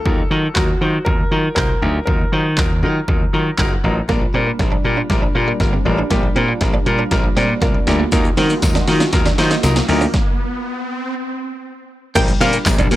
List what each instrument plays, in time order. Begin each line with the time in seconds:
Already playing: grand piano A4
0.05 slap bass D#2, grand piano F#3 D#4 F4 A#4, kick
0.31 slap bass D#3, grand piano F#3 D#4 F4 A#4
0.54 slap bass D#2, grand piano F#3 D#4 F4 F#4 A#4, kick, snare, clap
0.81 slap bass D#3, grand piano F#3 D#4 F4 C5
1.05 slap bass D#2, grand piano F#3 D#4 F4 A#4, kick
1.31 slap bass D#3, grand piano F#3 D#4 F4 A#4
1.55 slap bass C2, grand piano F#3 D#4 F4 A#4 C5, kick, snare, clap
1.82 slap bass D2, grand piano F#3 D#4 F4 A#4
2.06 slap bass D#2, grand piano F#3 D#4 F4 A#4, kick
2.32 slap bass D#3, grand piano F#3 D#4 F4 C5
2.57 slap bass D#2, grand piano F#3 D#4 F4 A#4, kick, snare, clap
2.83 slap bass D#3, grand piano F#3 D#4 F4 A#4
3.08 slap bass D#2, grand piano F#3 D#4 F4 A#4, kick
3.33 slap bass D#3, grand piano F#3 D#4 F4 A#4 A#5
3.58 slap bass F#1, grand piano F#3 D#4 F4 A#4 F#5, kick, snare, clap
3.83 slap bass A1, grand piano F#3 D#4 F4 A#4
4.09 slap bass A#1, grand piano G3 D4 F4 A#4, analog synth pad G3 A#3 D4, synth arpeggio sound A#3, clean electric guitar A#3, kick, snare, riser
4.22 synth arpeggio sound F4
4.34 slap bass A#2, grand piano G3 D4 F4 A#4, clean electric guitar C4, synth arpeggio sound D5
4.47 synth arpeggio sound A#3, muted clean electric guitar stroke
4.59 slap bass A#1, grand piano G3 D4 F4 A#4, synth arpeggio sound F4, kick, snare
4.72 clean electric guitar D4, synth arpeggio sound D5
4.84 slap bass A#2, grand piano G3 D4 F4 A#4, muted clean electric guitar stroke
4.97 clean electric guitar D4, synth arpeggio sound F4
5.10 slap bass A#1, grand piano G3 D4 F4 A#4, synth arpeggio sound D5, kick, snare
5.22 clean electric guitar D4
5.35 slap bass A#2, grand piano G3 D4 F4 A#4, synth arpeggio sound F4, muted clean electric guitar stroke
5.48 clean electric guitar A#3, synth arpeggio sound D5
5.60 slap bass G1, grand piano G3 D4 F4 A#4, synth arpeggio sound A#3, kick, snare
5.73 clean electric guitar C4
5.85 slap bass A1, grand piano G3 D4 F4 A#4, synth arpeggio sound D5, muted clean electric guitar stroke
5.98 synth arpeggio sound A#3, clean electric guitar D4
6.10 slap bass A#1, grand piano G3 D4 F4 G4, clean electric guitar A#3, synth arpeggio sound F4, kick, snare, closed hi-hat
6.23 synth arpeggio sound D5
6.35 slap bass A#2, grand piano G3 D4 F4 A#4, synth arpeggio sound A#3, clean electric guitar C4, closed hi-hat
6.48 synth arpeggio sound F4, muted clean electric guitar stroke
6.61 slap bass A#1, grand piano G3 D4 F4 A#4, synth arpeggio sound D5, kick, snare, closed hi-hat
6.73 synth arpeggio sound A#3, clean electric guitar D4
6.86 slap bass A#2, grand piano G3 D4 F4 A#4, muted clean electric guitar stroke, closed hi-hat
6.99 clean electric guitar D4, synth arpeggio sound D5
7.11 slap bass A#1, grand piano G3 D4 F4 A#4, synth arpeggio sound A#3, kick, snare, closed hi-hat
7.24 synth arpeggio sound F4
7.36 slap bass A#2, grand piano G3 D4 F4 A#4, clean electric guitar C4, synth arpeggio sound D5, snare, closed hi-hat
7.49 synth arpeggio sound A#3
7.61 slap bass C2, grand piano G3 D4 F4 A#4, clean electric guitar A#3, synth arpeggio sound F4, kick, snare, closed hi-hat
7.74 synth arpeggio sound D5, muted clean electric guitar stroke
7.87 slap bass D2, grand piano G3 D4 F4 A#4, snare, closed hi-hat
7.99 clean electric guitar A#3, synth arpeggio sound F4
8.12 slap bass D#2, analog synth pad D#3 F4 F#4, grand piano F#3 D#4 F4 A#4, synth arpeggio sound A#3, clean electric guitar A#3, kick, snare, closed hi-hat, shaker
8.25 synth arpeggio sound F4, shaker
8.37 slap bass D#3, grand piano F#3 D#4 F4 A#4, clean electric guitar C4, synth arpeggio sound D#5, snare, open hi-hat, shaker
8.50 synth arpeggio sound A#3, muted clean electric guitar stroke, shaker
8.62 slap bass D#2, grand piano F#3 D#4 F4 A#4, synth arpeggio sound F4, kick, snare, closed hi-hat, tambourine, shaker
8.75 clean electric guitar D4, synth arpeggio sound D#5, snare, shaker
8.88 slap bass D#3, grand piano F#3 D#4 F4 A#4, muted clean electric guitar stroke, snare, open hi-hat, shaker
9.00 clean electric guitar D4, synth arpeggio sound F4, snare, shaker
9.13 slap bass D#2, grand piano F#3 D#4 F4 A#4, synth arpeggio sound D#5, kick, snare, closed hi-hat, shaker
9.25 clean electric guitar D4, snare, shaker
9.38 slap bass D#3, grand piano F#3 D#4 F4 C5, synth arpeggio sound F4, muted clean electric guitar stroke, snare, open hi-hat, shaker
9.51 clean electric guitar A#3, synth arpeggio sound D#5, snare, shaker
9.63 slap bass C2, grand piano F#3 D#4 F4 A#4, synth arpeggio sound A#3, snare, closed hi-hat, tambourine, shaker
9.76 clean electric guitar C4, snare, shaker
9.88 slap bass D2, grand piano F#3 D#4 F4 A#4, synth arpeggio sound D#5, muted clean electric guitar stroke, open hi-hat, shaker
10.01 synth arpeggio sound A#3, clean electric guitar D4, shaker
10.14 kick, snare
12.15 slap bass A#1, grand piano G3 A#3 D4 F4 A#4, synth arpeggio sound A#3, clean electric guitar A#3, analog synth pad A#3 D4 G4, synth pluck G5, kick, crash, shaker
12.28 synth arpeggio sound G3, closed hi-hat, shaker
12.40 slap bass A#2, synth arpeggio sound D3, grand piano G3 A#3 D4 F4 A#4, clean electric guitar C4, synth pluck F5, open hi-hat, shaker
12.53 synth arpeggio sound A#3, muted clean electric guitar stroke, closed hi-hat, shaker
12.66 slap bass A#1, grand piano G3 A#3 D4 F4 A#4, synth arpeggio sound G3, kick, snare, clap, tambourine, shaker
12.78 slap bass A#1, clean electric guitar D4, closed hi-hat, shaker
12.91 slap bass A#2, grand piano G3 A#3 D4 F4 A#4, synth arpeggio sound A#3, muted clean electric guitar stroke, open hi-hat, shaker